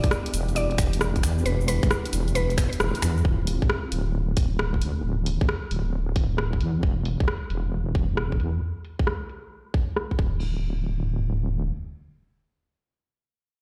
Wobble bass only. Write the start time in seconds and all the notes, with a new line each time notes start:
0.04 B1
0.34 E1
0.79 E1
1.23 E2
1.46 E1
1.83 B1
2.13 E1
2.80 E1
3.03 E2
3.25 D1
3.62 A1
3.92 D1
4.37 D1
4.82 D2
5.04 D1
5.41 A1
5.71 D1
6.16 D1
6.61 E2
6.83 E1
7.20 B1
7.50 E1
7.95 E1
8.40 E2
10.19 D1